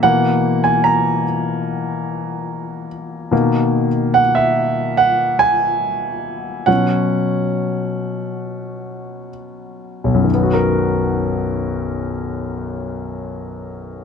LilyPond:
<<
  \new Staff \with { instrumentName = "Grand piano" } { \time 4/4 \key b \major \tempo 4 = 70 fis''8. gis''16 ais''2~ ais''8 r8 | r4 fis''16 e''8. fis''8 gis''4. | fis''2. r4 | r1 | }
  \new Staff \with { instrumentName = "Grand piano" } { \clef bass \time 4/4 \key b \major <b, e ais>4. r2 r8 | <b, dis ais>8 r2. r8 | <b, fis cis'>1 | <b,, fis, dis b fis' ais'>1 | }
>>